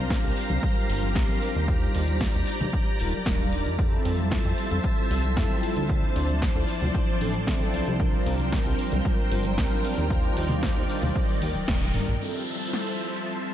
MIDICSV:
0, 0, Header, 1, 6, 480
1, 0, Start_track
1, 0, Key_signature, -1, "major"
1, 0, Tempo, 526316
1, 1538, Time_signature, 4, 2, 24, 8
1, 12348, End_track
2, 0, Start_track
2, 0, Title_t, "String machine"
2, 0, Program_c, 0, 50
2, 0, Note_on_c, 0, 67, 78
2, 0, Note_on_c, 0, 72, 71
2, 0, Note_on_c, 0, 77, 72
2, 0, Note_on_c, 0, 82, 85
2, 1501, Note_off_c, 0, 72, 0
2, 1519, Note_off_c, 0, 77, 0
2, 1519, Note_off_c, 0, 82, 0
2, 1533, Note_on_c, 0, 82, 90
2, 1537, Note_on_c, 0, 74, 74
2, 3422, Note_off_c, 0, 67, 0
2, 3436, Note_off_c, 0, 82, 0
2, 3438, Note_off_c, 0, 74, 0
2, 3462, Note_on_c, 0, 76, 71
2, 3464, Note_on_c, 0, 72, 71
2, 3465, Note_on_c, 0, 81, 85
2, 3466, Note_on_c, 0, 53, 81
2, 5361, Note_off_c, 0, 76, 0
2, 5362, Note_off_c, 0, 72, 0
2, 5377, Note_on_c, 0, 72, 76
2, 5377, Note_on_c, 0, 74, 71
2, 7265, Note_off_c, 0, 81, 0
2, 7278, Note_off_c, 0, 72, 0
2, 7278, Note_off_c, 0, 74, 0
2, 7298, Note_on_c, 0, 70, 74
2, 7298, Note_on_c, 0, 79, 91
2, 7300, Note_on_c, 0, 72, 76
2, 9185, Note_off_c, 0, 53, 0
2, 9199, Note_off_c, 0, 72, 0
2, 9225, Note_on_c, 0, 51, 78
2, 9226, Note_on_c, 0, 74, 73
2, 11101, Note_off_c, 0, 70, 0
2, 11101, Note_off_c, 0, 79, 0
2, 11122, Note_off_c, 0, 51, 0
2, 11122, Note_off_c, 0, 74, 0
2, 11133, Note_on_c, 0, 72, 65
2, 11134, Note_on_c, 0, 76, 68
2, 11135, Note_on_c, 0, 53, 73
2, 11135, Note_on_c, 0, 81, 78
2, 12348, Note_off_c, 0, 53, 0
2, 12348, Note_off_c, 0, 72, 0
2, 12348, Note_off_c, 0, 76, 0
2, 12348, Note_off_c, 0, 81, 0
2, 12348, End_track
3, 0, Start_track
3, 0, Title_t, "Analog polysynth"
3, 0, Program_c, 1, 90
3, 0, Note_on_c, 1, 55, 89
3, 0, Note_on_c, 1, 60, 80
3, 0, Note_on_c, 1, 62, 82
3, 0, Note_on_c, 1, 65, 78
3, 0, Note_on_c, 1, 70, 97
3, 1023, Note_off_c, 1, 55, 0
3, 1026, Note_off_c, 1, 60, 0
3, 1028, Note_off_c, 1, 62, 0
3, 1031, Note_off_c, 1, 65, 0
3, 1033, Note_off_c, 1, 70, 0
3, 1046, Note_on_c, 1, 55, 87
3, 1048, Note_on_c, 1, 60, 81
3, 1052, Note_on_c, 1, 62, 78
3, 1052, Note_on_c, 1, 65, 82
3, 1054, Note_on_c, 1, 70, 98
3, 1503, Note_off_c, 1, 55, 0
3, 1504, Note_off_c, 1, 60, 0
3, 1506, Note_off_c, 1, 62, 0
3, 1506, Note_off_c, 1, 65, 0
3, 1507, Note_off_c, 1, 70, 0
3, 1527, Note_on_c, 1, 55, 75
3, 1529, Note_on_c, 1, 62, 68
3, 1536, Note_on_c, 1, 63, 70
3, 1539, Note_on_c, 1, 65, 72
3, 1544, Note_on_c, 1, 72, 82
3, 2704, Note_off_c, 1, 55, 0
3, 2705, Note_off_c, 1, 62, 0
3, 2708, Note_off_c, 1, 63, 0
3, 2710, Note_off_c, 1, 65, 0
3, 2712, Note_off_c, 1, 72, 0
3, 2730, Note_on_c, 1, 55, 95
3, 2731, Note_on_c, 1, 62, 88
3, 2736, Note_on_c, 1, 63, 91
3, 2737, Note_on_c, 1, 65, 90
3, 2740, Note_on_c, 1, 70, 105
3, 2843, Note_off_c, 1, 55, 0
3, 2844, Note_off_c, 1, 62, 0
3, 2846, Note_off_c, 1, 63, 0
3, 2847, Note_off_c, 1, 65, 0
3, 2848, Note_off_c, 1, 70, 0
3, 2965, Note_on_c, 1, 55, 88
3, 2969, Note_on_c, 1, 62, 84
3, 2971, Note_on_c, 1, 63, 83
3, 2974, Note_on_c, 1, 65, 82
3, 2975, Note_on_c, 1, 70, 99
3, 3423, Note_off_c, 1, 55, 0
3, 3424, Note_off_c, 1, 62, 0
3, 3426, Note_off_c, 1, 63, 0
3, 3427, Note_off_c, 1, 65, 0
3, 3428, Note_off_c, 1, 70, 0
3, 3449, Note_on_c, 1, 55, 85
3, 3454, Note_on_c, 1, 60, 76
3, 3460, Note_on_c, 1, 64, 80
3, 3466, Note_on_c, 1, 65, 75
3, 3470, Note_on_c, 1, 69, 95
3, 4865, Note_off_c, 1, 55, 0
3, 4867, Note_off_c, 1, 60, 0
3, 4870, Note_off_c, 1, 64, 0
3, 4873, Note_off_c, 1, 65, 0
3, 4875, Note_off_c, 1, 69, 0
3, 4888, Note_on_c, 1, 55, 89
3, 4891, Note_on_c, 1, 60, 84
3, 4893, Note_on_c, 1, 64, 82
3, 4893, Note_on_c, 1, 65, 79
3, 4896, Note_on_c, 1, 69, 100
3, 5344, Note_off_c, 1, 55, 0
3, 5346, Note_off_c, 1, 60, 0
3, 5347, Note_off_c, 1, 64, 0
3, 5347, Note_off_c, 1, 65, 0
3, 5348, Note_off_c, 1, 69, 0
3, 5372, Note_on_c, 1, 53, 80
3, 5376, Note_on_c, 1, 60, 72
3, 5379, Note_on_c, 1, 62, 69
3, 6546, Note_off_c, 1, 53, 0
3, 6548, Note_off_c, 1, 60, 0
3, 6550, Note_off_c, 1, 62, 0
3, 6570, Note_on_c, 1, 53, 99
3, 6573, Note_on_c, 1, 60, 91
3, 6576, Note_on_c, 1, 62, 88
3, 6576, Note_on_c, 1, 64, 88
3, 6579, Note_on_c, 1, 69, 111
3, 6683, Note_off_c, 1, 53, 0
3, 6685, Note_off_c, 1, 60, 0
3, 6686, Note_off_c, 1, 62, 0
3, 6686, Note_off_c, 1, 64, 0
3, 6688, Note_off_c, 1, 69, 0
3, 6812, Note_on_c, 1, 53, 88
3, 6814, Note_on_c, 1, 60, 84
3, 6817, Note_on_c, 1, 62, 87
3, 6820, Note_on_c, 1, 64, 85
3, 6821, Note_on_c, 1, 69, 96
3, 7266, Note_off_c, 1, 53, 0
3, 7267, Note_off_c, 1, 60, 0
3, 7269, Note_off_c, 1, 62, 0
3, 7270, Note_off_c, 1, 64, 0
3, 7271, Note_off_c, 1, 69, 0
3, 7289, Note_on_c, 1, 55, 84
3, 7295, Note_on_c, 1, 60, 81
3, 7299, Note_on_c, 1, 62, 82
3, 7303, Note_on_c, 1, 65, 79
3, 7308, Note_on_c, 1, 70, 93
3, 8704, Note_off_c, 1, 55, 0
3, 8708, Note_off_c, 1, 60, 0
3, 8710, Note_off_c, 1, 62, 0
3, 8712, Note_off_c, 1, 65, 0
3, 8714, Note_off_c, 1, 70, 0
3, 8733, Note_on_c, 1, 55, 91
3, 8734, Note_on_c, 1, 60, 85
3, 8736, Note_on_c, 1, 62, 79
3, 8739, Note_on_c, 1, 65, 81
3, 8742, Note_on_c, 1, 70, 103
3, 9187, Note_off_c, 1, 55, 0
3, 9187, Note_off_c, 1, 60, 0
3, 9188, Note_off_c, 1, 62, 0
3, 9190, Note_off_c, 1, 65, 0
3, 9191, Note_off_c, 1, 70, 0
3, 9208, Note_on_c, 1, 55, 78
3, 9215, Note_on_c, 1, 62, 70
3, 9217, Note_on_c, 1, 63, 73
3, 9223, Note_on_c, 1, 65, 72
3, 9227, Note_on_c, 1, 72, 87
3, 10384, Note_off_c, 1, 55, 0
3, 10387, Note_off_c, 1, 62, 0
3, 10389, Note_off_c, 1, 63, 0
3, 10392, Note_off_c, 1, 65, 0
3, 10394, Note_off_c, 1, 72, 0
3, 10890, Note_on_c, 1, 55, 80
3, 10893, Note_on_c, 1, 62, 75
3, 10896, Note_on_c, 1, 63, 72
3, 10897, Note_on_c, 1, 65, 72
3, 10899, Note_on_c, 1, 70, 88
3, 11003, Note_off_c, 1, 55, 0
3, 11005, Note_off_c, 1, 62, 0
3, 11006, Note_off_c, 1, 63, 0
3, 11007, Note_off_c, 1, 65, 0
3, 11008, Note_off_c, 1, 70, 0
3, 11127, Note_on_c, 1, 55, 80
3, 11132, Note_on_c, 1, 60, 71
3, 11136, Note_on_c, 1, 64, 73
3, 11139, Note_on_c, 1, 65, 73
3, 11145, Note_on_c, 1, 69, 88
3, 12348, Note_off_c, 1, 55, 0
3, 12348, Note_off_c, 1, 60, 0
3, 12348, Note_off_c, 1, 64, 0
3, 12348, Note_off_c, 1, 65, 0
3, 12348, Note_off_c, 1, 69, 0
3, 12348, End_track
4, 0, Start_track
4, 0, Title_t, "Analog synth bass"
4, 0, Program_c, 2, 38
4, 0, Note_on_c, 2, 36, 96
4, 151, Note_off_c, 2, 36, 0
4, 219, Note_on_c, 2, 36, 97
4, 296, Note_off_c, 2, 36, 0
4, 461, Note_on_c, 2, 36, 89
4, 537, Note_off_c, 2, 36, 0
4, 821, Note_on_c, 2, 31, 81
4, 1053, Note_on_c, 2, 36, 77
4, 1067, Note_off_c, 2, 31, 0
4, 1134, Note_off_c, 2, 36, 0
4, 1420, Note_on_c, 2, 39, 85
4, 1712, Note_off_c, 2, 39, 0
4, 1780, Note_on_c, 2, 39, 93
4, 2072, Note_off_c, 2, 39, 0
4, 2142, Note_on_c, 2, 39, 98
4, 2217, Note_off_c, 2, 39, 0
4, 2379, Note_on_c, 2, 39, 91
4, 2456, Note_off_c, 2, 39, 0
4, 2739, Note_on_c, 2, 27, 86
4, 2856, Note_off_c, 2, 27, 0
4, 2861, Note_on_c, 2, 27, 42
4, 2955, Note_off_c, 2, 27, 0
4, 2974, Note_on_c, 2, 27, 85
4, 3340, Note_on_c, 2, 41, 104
4, 3354, Note_off_c, 2, 27, 0
4, 3632, Note_off_c, 2, 41, 0
4, 3699, Note_on_c, 2, 41, 90
4, 3991, Note_off_c, 2, 41, 0
4, 4060, Note_on_c, 2, 41, 94
4, 4136, Note_off_c, 2, 41, 0
4, 4301, Note_on_c, 2, 41, 87
4, 4377, Note_off_c, 2, 41, 0
4, 4658, Note_on_c, 2, 36, 80
4, 4895, Note_on_c, 2, 41, 80
4, 4908, Note_off_c, 2, 36, 0
4, 4975, Note_off_c, 2, 41, 0
4, 5260, Note_on_c, 2, 38, 84
4, 5552, Note_off_c, 2, 38, 0
4, 5619, Note_on_c, 2, 38, 98
4, 5911, Note_off_c, 2, 38, 0
4, 5980, Note_on_c, 2, 38, 96
4, 6057, Note_off_c, 2, 38, 0
4, 6218, Note_on_c, 2, 38, 90
4, 6295, Note_off_c, 2, 38, 0
4, 6578, Note_on_c, 2, 33, 80
4, 6816, Note_on_c, 2, 38, 82
4, 6830, Note_off_c, 2, 33, 0
4, 6895, Note_off_c, 2, 38, 0
4, 7060, Note_on_c, 2, 36, 43
4, 7156, Note_off_c, 2, 36, 0
4, 7183, Note_on_c, 2, 36, 86
4, 7473, Note_off_c, 2, 36, 0
4, 7535, Note_on_c, 2, 36, 100
4, 7830, Note_off_c, 2, 36, 0
4, 7900, Note_on_c, 2, 36, 96
4, 7976, Note_off_c, 2, 36, 0
4, 8141, Note_on_c, 2, 36, 91
4, 8217, Note_off_c, 2, 36, 0
4, 8498, Note_on_c, 2, 31, 82
4, 8737, Note_on_c, 2, 36, 78
4, 8750, Note_off_c, 2, 31, 0
4, 8816, Note_off_c, 2, 36, 0
4, 9101, Note_on_c, 2, 39, 85
4, 9392, Note_off_c, 2, 39, 0
4, 9461, Note_on_c, 2, 39, 96
4, 9752, Note_off_c, 2, 39, 0
4, 9822, Note_on_c, 2, 39, 96
4, 9897, Note_off_c, 2, 39, 0
4, 10061, Note_on_c, 2, 39, 94
4, 10137, Note_off_c, 2, 39, 0
4, 10421, Note_on_c, 2, 39, 99
4, 10535, Note_off_c, 2, 39, 0
4, 10541, Note_on_c, 2, 27, 46
4, 10635, Note_off_c, 2, 27, 0
4, 10655, Note_on_c, 2, 27, 96
4, 10950, Note_off_c, 2, 27, 0
4, 11022, Note_on_c, 2, 34, 85
4, 11098, Note_off_c, 2, 34, 0
4, 12348, End_track
5, 0, Start_track
5, 0, Title_t, "Downlifter"
5, 0, Program_c, 3, 103
5, 11135, Note_on_c, 3, 60, 67
5, 12348, Note_off_c, 3, 60, 0
5, 12348, End_track
6, 0, Start_track
6, 0, Title_t, "Drums"
6, 94, Note_on_c, 9, 36, 114
6, 96, Note_on_c, 9, 38, 118
6, 96, Note_on_c, 9, 42, 72
6, 186, Note_off_c, 9, 36, 0
6, 187, Note_off_c, 9, 38, 0
6, 187, Note_off_c, 9, 42, 0
6, 217, Note_on_c, 9, 42, 34
6, 309, Note_off_c, 9, 42, 0
6, 336, Note_on_c, 9, 46, 94
6, 428, Note_off_c, 9, 46, 0
6, 456, Note_on_c, 9, 63, 90
6, 459, Note_on_c, 9, 42, 50
6, 547, Note_off_c, 9, 63, 0
6, 550, Note_off_c, 9, 42, 0
6, 573, Note_on_c, 9, 36, 125
6, 577, Note_on_c, 9, 42, 73
6, 665, Note_off_c, 9, 36, 0
6, 668, Note_off_c, 9, 42, 0
6, 817, Note_on_c, 9, 46, 106
6, 909, Note_off_c, 9, 46, 0
6, 937, Note_on_c, 9, 63, 65
6, 938, Note_on_c, 9, 42, 47
6, 1028, Note_off_c, 9, 63, 0
6, 1029, Note_off_c, 9, 42, 0
6, 1053, Note_on_c, 9, 36, 118
6, 1057, Note_on_c, 9, 38, 116
6, 1058, Note_on_c, 9, 42, 77
6, 1144, Note_off_c, 9, 36, 0
6, 1148, Note_off_c, 9, 38, 0
6, 1149, Note_off_c, 9, 42, 0
6, 1175, Note_on_c, 9, 63, 68
6, 1266, Note_off_c, 9, 63, 0
6, 1297, Note_on_c, 9, 46, 92
6, 1388, Note_off_c, 9, 46, 0
6, 1417, Note_on_c, 9, 42, 47
6, 1508, Note_off_c, 9, 42, 0
6, 1533, Note_on_c, 9, 36, 121
6, 1536, Note_on_c, 9, 42, 73
6, 1624, Note_off_c, 9, 36, 0
6, 1628, Note_off_c, 9, 42, 0
6, 1775, Note_on_c, 9, 46, 100
6, 1867, Note_off_c, 9, 46, 0
6, 1896, Note_on_c, 9, 42, 50
6, 1898, Note_on_c, 9, 63, 57
6, 1988, Note_off_c, 9, 42, 0
6, 1989, Note_off_c, 9, 63, 0
6, 2012, Note_on_c, 9, 36, 109
6, 2014, Note_on_c, 9, 38, 115
6, 2014, Note_on_c, 9, 42, 72
6, 2103, Note_off_c, 9, 36, 0
6, 2105, Note_off_c, 9, 38, 0
6, 2106, Note_off_c, 9, 42, 0
6, 2138, Note_on_c, 9, 42, 32
6, 2229, Note_off_c, 9, 42, 0
6, 2254, Note_on_c, 9, 46, 92
6, 2345, Note_off_c, 9, 46, 0
6, 2378, Note_on_c, 9, 64, 78
6, 2379, Note_on_c, 9, 42, 48
6, 2381, Note_on_c, 9, 63, 91
6, 2469, Note_off_c, 9, 64, 0
6, 2470, Note_off_c, 9, 42, 0
6, 2472, Note_off_c, 9, 63, 0
6, 2492, Note_on_c, 9, 36, 115
6, 2496, Note_on_c, 9, 42, 74
6, 2583, Note_off_c, 9, 36, 0
6, 2587, Note_off_c, 9, 42, 0
6, 2617, Note_on_c, 9, 42, 30
6, 2709, Note_off_c, 9, 42, 0
6, 2734, Note_on_c, 9, 46, 103
6, 2825, Note_off_c, 9, 46, 0
6, 2855, Note_on_c, 9, 42, 44
6, 2862, Note_on_c, 9, 63, 65
6, 2946, Note_off_c, 9, 42, 0
6, 2953, Note_off_c, 9, 63, 0
6, 2973, Note_on_c, 9, 36, 117
6, 2975, Note_on_c, 9, 38, 116
6, 2976, Note_on_c, 9, 42, 75
6, 3064, Note_off_c, 9, 36, 0
6, 3066, Note_off_c, 9, 38, 0
6, 3067, Note_off_c, 9, 42, 0
6, 3099, Note_on_c, 9, 63, 68
6, 3190, Note_off_c, 9, 63, 0
6, 3215, Note_on_c, 9, 46, 90
6, 3306, Note_off_c, 9, 46, 0
6, 3341, Note_on_c, 9, 42, 45
6, 3432, Note_off_c, 9, 42, 0
6, 3454, Note_on_c, 9, 36, 120
6, 3457, Note_on_c, 9, 42, 74
6, 3545, Note_off_c, 9, 36, 0
6, 3549, Note_off_c, 9, 42, 0
6, 3697, Note_on_c, 9, 46, 96
6, 3788, Note_off_c, 9, 46, 0
6, 3819, Note_on_c, 9, 42, 48
6, 3826, Note_on_c, 9, 63, 60
6, 3910, Note_off_c, 9, 42, 0
6, 3917, Note_off_c, 9, 63, 0
6, 3934, Note_on_c, 9, 36, 110
6, 3937, Note_on_c, 9, 38, 108
6, 3938, Note_on_c, 9, 42, 72
6, 4025, Note_off_c, 9, 36, 0
6, 4028, Note_off_c, 9, 38, 0
6, 4029, Note_off_c, 9, 42, 0
6, 4060, Note_on_c, 9, 42, 34
6, 4151, Note_off_c, 9, 42, 0
6, 4178, Note_on_c, 9, 46, 87
6, 4269, Note_off_c, 9, 46, 0
6, 4299, Note_on_c, 9, 42, 47
6, 4300, Note_on_c, 9, 63, 87
6, 4391, Note_off_c, 9, 42, 0
6, 4391, Note_off_c, 9, 63, 0
6, 4414, Note_on_c, 9, 36, 112
6, 4418, Note_on_c, 9, 42, 72
6, 4505, Note_off_c, 9, 36, 0
6, 4509, Note_off_c, 9, 42, 0
6, 4659, Note_on_c, 9, 46, 101
6, 4751, Note_off_c, 9, 46, 0
6, 4777, Note_on_c, 9, 63, 64
6, 4781, Note_on_c, 9, 42, 46
6, 4868, Note_off_c, 9, 63, 0
6, 4872, Note_off_c, 9, 42, 0
6, 4895, Note_on_c, 9, 36, 116
6, 4897, Note_on_c, 9, 38, 110
6, 4897, Note_on_c, 9, 42, 77
6, 4986, Note_off_c, 9, 36, 0
6, 4988, Note_off_c, 9, 38, 0
6, 4989, Note_off_c, 9, 42, 0
6, 5022, Note_on_c, 9, 63, 60
6, 5114, Note_off_c, 9, 63, 0
6, 5136, Note_on_c, 9, 46, 93
6, 5227, Note_off_c, 9, 46, 0
6, 5259, Note_on_c, 9, 42, 48
6, 5350, Note_off_c, 9, 42, 0
6, 5375, Note_on_c, 9, 36, 111
6, 5377, Note_on_c, 9, 42, 78
6, 5466, Note_off_c, 9, 36, 0
6, 5469, Note_off_c, 9, 42, 0
6, 5618, Note_on_c, 9, 46, 95
6, 5709, Note_off_c, 9, 46, 0
6, 5739, Note_on_c, 9, 42, 49
6, 5743, Note_on_c, 9, 63, 61
6, 5830, Note_off_c, 9, 42, 0
6, 5834, Note_off_c, 9, 63, 0
6, 5855, Note_on_c, 9, 36, 103
6, 5857, Note_on_c, 9, 38, 108
6, 5857, Note_on_c, 9, 42, 75
6, 5946, Note_off_c, 9, 36, 0
6, 5948, Note_off_c, 9, 38, 0
6, 5949, Note_off_c, 9, 42, 0
6, 5977, Note_on_c, 9, 42, 35
6, 6069, Note_off_c, 9, 42, 0
6, 6096, Note_on_c, 9, 46, 87
6, 6188, Note_off_c, 9, 46, 0
6, 6216, Note_on_c, 9, 42, 50
6, 6219, Note_on_c, 9, 64, 71
6, 6224, Note_on_c, 9, 63, 82
6, 6308, Note_off_c, 9, 42, 0
6, 6310, Note_off_c, 9, 64, 0
6, 6316, Note_off_c, 9, 63, 0
6, 6335, Note_on_c, 9, 36, 110
6, 6338, Note_on_c, 9, 42, 75
6, 6426, Note_off_c, 9, 36, 0
6, 6429, Note_off_c, 9, 42, 0
6, 6577, Note_on_c, 9, 46, 102
6, 6668, Note_off_c, 9, 46, 0
6, 6689, Note_on_c, 9, 63, 56
6, 6701, Note_on_c, 9, 42, 49
6, 6780, Note_off_c, 9, 63, 0
6, 6792, Note_off_c, 9, 42, 0
6, 6815, Note_on_c, 9, 36, 107
6, 6820, Note_on_c, 9, 38, 118
6, 6820, Note_on_c, 9, 42, 77
6, 6906, Note_off_c, 9, 36, 0
6, 6911, Note_off_c, 9, 38, 0
6, 6911, Note_off_c, 9, 42, 0
6, 6937, Note_on_c, 9, 63, 66
6, 7028, Note_off_c, 9, 63, 0
6, 7058, Note_on_c, 9, 46, 85
6, 7149, Note_off_c, 9, 46, 0
6, 7178, Note_on_c, 9, 42, 48
6, 7270, Note_off_c, 9, 42, 0
6, 7294, Note_on_c, 9, 36, 119
6, 7297, Note_on_c, 9, 42, 78
6, 7385, Note_off_c, 9, 36, 0
6, 7388, Note_off_c, 9, 42, 0
6, 7537, Note_on_c, 9, 46, 97
6, 7629, Note_off_c, 9, 46, 0
6, 7657, Note_on_c, 9, 42, 51
6, 7658, Note_on_c, 9, 63, 58
6, 7748, Note_off_c, 9, 42, 0
6, 7749, Note_off_c, 9, 63, 0
6, 7775, Note_on_c, 9, 36, 108
6, 7775, Note_on_c, 9, 38, 114
6, 7775, Note_on_c, 9, 42, 77
6, 7866, Note_off_c, 9, 36, 0
6, 7866, Note_off_c, 9, 38, 0
6, 7866, Note_off_c, 9, 42, 0
6, 7899, Note_on_c, 9, 42, 36
6, 7990, Note_off_c, 9, 42, 0
6, 8017, Note_on_c, 9, 46, 85
6, 8108, Note_off_c, 9, 46, 0
6, 8136, Note_on_c, 9, 42, 54
6, 8136, Note_on_c, 9, 63, 86
6, 8227, Note_off_c, 9, 42, 0
6, 8228, Note_off_c, 9, 63, 0
6, 8255, Note_on_c, 9, 36, 114
6, 8258, Note_on_c, 9, 42, 78
6, 8346, Note_off_c, 9, 36, 0
6, 8349, Note_off_c, 9, 42, 0
6, 8496, Note_on_c, 9, 46, 98
6, 8587, Note_off_c, 9, 46, 0
6, 8618, Note_on_c, 9, 42, 49
6, 8618, Note_on_c, 9, 63, 57
6, 8709, Note_off_c, 9, 42, 0
6, 8710, Note_off_c, 9, 63, 0
6, 8735, Note_on_c, 9, 36, 108
6, 8736, Note_on_c, 9, 38, 119
6, 8737, Note_on_c, 9, 42, 86
6, 8826, Note_off_c, 9, 36, 0
6, 8827, Note_off_c, 9, 38, 0
6, 8828, Note_off_c, 9, 42, 0
6, 8854, Note_on_c, 9, 63, 60
6, 8945, Note_off_c, 9, 63, 0
6, 8979, Note_on_c, 9, 46, 88
6, 9071, Note_off_c, 9, 46, 0
6, 9099, Note_on_c, 9, 42, 52
6, 9191, Note_off_c, 9, 42, 0
6, 9215, Note_on_c, 9, 36, 118
6, 9216, Note_on_c, 9, 42, 84
6, 9306, Note_off_c, 9, 36, 0
6, 9307, Note_off_c, 9, 42, 0
6, 9336, Note_on_c, 9, 42, 38
6, 9428, Note_off_c, 9, 42, 0
6, 9456, Note_on_c, 9, 46, 96
6, 9547, Note_off_c, 9, 46, 0
6, 9569, Note_on_c, 9, 63, 53
6, 9573, Note_on_c, 9, 64, 84
6, 9576, Note_on_c, 9, 42, 53
6, 9660, Note_off_c, 9, 63, 0
6, 9664, Note_off_c, 9, 64, 0
6, 9668, Note_off_c, 9, 42, 0
6, 9693, Note_on_c, 9, 38, 117
6, 9693, Note_on_c, 9, 42, 83
6, 9694, Note_on_c, 9, 36, 103
6, 9784, Note_off_c, 9, 38, 0
6, 9784, Note_off_c, 9, 42, 0
6, 9786, Note_off_c, 9, 36, 0
6, 9818, Note_on_c, 9, 42, 37
6, 9909, Note_off_c, 9, 42, 0
6, 9936, Note_on_c, 9, 46, 88
6, 10027, Note_off_c, 9, 46, 0
6, 10053, Note_on_c, 9, 64, 74
6, 10057, Note_on_c, 9, 63, 82
6, 10058, Note_on_c, 9, 42, 55
6, 10144, Note_off_c, 9, 64, 0
6, 10148, Note_off_c, 9, 63, 0
6, 10150, Note_off_c, 9, 42, 0
6, 10174, Note_on_c, 9, 36, 114
6, 10175, Note_on_c, 9, 42, 79
6, 10265, Note_off_c, 9, 36, 0
6, 10266, Note_off_c, 9, 42, 0
6, 10297, Note_on_c, 9, 42, 35
6, 10388, Note_off_c, 9, 42, 0
6, 10414, Note_on_c, 9, 46, 102
6, 10414, Note_on_c, 9, 48, 62
6, 10505, Note_off_c, 9, 46, 0
6, 10505, Note_off_c, 9, 48, 0
6, 10535, Note_on_c, 9, 42, 53
6, 10536, Note_on_c, 9, 63, 68
6, 10626, Note_off_c, 9, 42, 0
6, 10627, Note_off_c, 9, 63, 0
6, 10652, Note_on_c, 9, 38, 123
6, 10653, Note_on_c, 9, 42, 81
6, 10653, Note_on_c, 9, 47, 76
6, 10654, Note_on_c, 9, 36, 114
6, 10743, Note_off_c, 9, 38, 0
6, 10744, Note_off_c, 9, 42, 0
6, 10744, Note_off_c, 9, 47, 0
6, 10745, Note_off_c, 9, 36, 0
6, 10775, Note_on_c, 9, 42, 37
6, 10775, Note_on_c, 9, 47, 67
6, 10779, Note_on_c, 9, 63, 65
6, 10866, Note_off_c, 9, 42, 0
6, 10866, Note_off_c, 9, 47, 0
6, 10871, Note_off_c, 9, 63, 0
6, 10891, Note_on_c, 9, 45, 93
6, 10891, Note_on_c, 9, 46, 90
6, 10982, Note_off_c, 9, 45, 0
6, 10982, Note_off_c, 9, 46, 0
6, 11013, Note_on_c, 9, 42, 52
6, 11013, Note_on_c, 9, 45, 83
6, 11105, Note_off_c, 9, 42, 0
6, 11105, Note_off_c, 9, 45, 0
6, 11613, Note_on_c, 9, 38, 106
6, 11704, Note_off_c, 9, 38, 0
6, 12348, End_track
0, 0, End_of_file